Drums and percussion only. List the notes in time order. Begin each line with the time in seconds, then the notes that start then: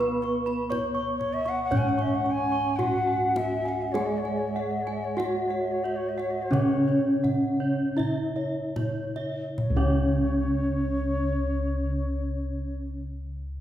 0.01 kendang slap
0.23 kendang slap
0.47 kendang slap
0.72 kendang high, kendang low
1.21 kendang slap, kendang low
1.46 kendang slap
1.72 kendang low
1.99 kendang slap
2.26 kendang slap
2.79 kendang slap, kendang low
3.36 kendang slap, kendang high
3.66 kendang slap
3.95 kendang high
4.25 kendang slap
4.56 kendang slap
4.87 kendang slap
5.20 kendang high
5.85 kendang slap
6.19 kendang slap
6.53 kendang low
6.89 kendang slap
7.24 kendang slap, kendang low
7.99 kendang slap, kendang low
8.76 kendang slap, kendang high, kendang low
9.16 kendang slap
9.58 kendang low